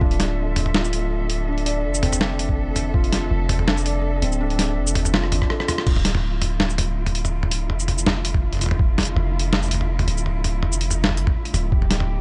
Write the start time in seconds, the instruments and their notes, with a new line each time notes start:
Already playing: cello section D3 A3 E5, felt piano C4 D4 F4
0.01 808-style bass D1, felt piano D4, cello section A4, kick
0.11 closed hi-hat
0.20 snare, closed hi-hat
0.56 closed hi-hat, mid tom
0.66 mid tom
0.74 felt piano F4, snare
0.84 shaker
0.93 closed hi-hat
1.30 closed hi-hat
1.48 felt piano D4
1.58 closed hi-hat
1.66 felt piano D5, closed hi-hat
1.84 808-style bass F1
1.94 shaker
2.03 felt piano C4, closed hi-hat, mid tom
2.13 mid tom, shaker
2.21 felt piano D4, snare
2.39 closed hi-hat
2.49 kick
2.76 closed hi-hat, mid tom, shaker
2.94 felt piano F4, kick
3.04 closed hi-hat
3.13 snare, closed hi-hat
3.31 808-style bass F1
3.49 closed hi-hat, mid tom
3.59 mid tom
3.67 felt piano D4, snare
3.77 shaker
3.86 felt piano D5, closed hi-hat
4.22 808-style bass D1, felt piano C4, closed hi-hat
4.32 shaker
4.41 felt piano D4
4.50 closed hi-hat
4.59 snare, closed hi-hat
4.77 808-style bass F1
4.87 shaker
4.95 closed hi-hat, mid tom
5.05 mid tom, shaker
5.14 felt piano F4, cross-stick, snare
5.24 cross-stick
5.32 808-style bass G1, felt piano D4, closed hi-hat, mid tom
5.42 kick, cross-stick
5.50 felt piano A4, cross-stick
5.60 cross-stick
5.68 felt piano F4, cross-stick, closed hi-hat, mid tom, shaker
5.78 cross-stick
5.87 808-style bass D1, cello section D3 A3 E4 F4, kick, crash
5.96 mid tom
6.05 snare, closed hi-hat
6.15 mid tom
6.42 closed hi-hat, mid tom
6.60 snare, mid tom
6.70 shaker
6.78 closed hi-hat, mid tom
7.06 closed hi-hat, mid tom
7.15 closed hi-hat
7.25 mid tom, shaker
7.43 mid tom
7.51 closed hi-hat
7.70 808-style bass F1, mid tom
7.80 shaker
7.88 closed hi-hat, mid tom
7.98 shaker
8.06 snare, mid tom
8.25 closed hi-hat
8.34 kick, mid tom
8.53 closed hi-hat, mid tom
8.55 mid tom
8.57 mid tom
8.59 closed hi-hat, mid tom
8.61 mid tom, shaker
8.64 mid tom
8.66 mid tom
8.69 mid tom
8.71 mid tom
8.79 kick
8.98 snare, closed hi-hat, mid tom
9.00 closed hi-hat
9.03 closed hi-hat
9.05 closed hi-hat
9.16 808-style bass F1, mid tom
9.39 closed hi-hat
9.53 snare
9.63 mid tom, shaker
9.68 closed hi-hat, mid tom
9.74 mid tom
9.81 mid tom
9.99 closed hi-hat, mid tom
10.08 808-style bass D1, closed hi-hat
10.17 shaker
10.26 mid tom
10.44 closed hi-hat, mid tom
10.63 808-style bass F1, mid tom
10.72 shaker
10.81 closed hi-hat
10.91 mid tom, shaker
11.04 snare
11.09 mid tom
11.17 808-style bass G1, closed hi-hat
11.27 kick, mid tom
11.45 closed hi-hat
11.54 808-style bass D1, closed hi-hat, mid tom, shaker
11.72 808-style bass D1, cello section G4, kick
11.82 mid tom
11.91 snare, closed hi-hat
12.00 mid tom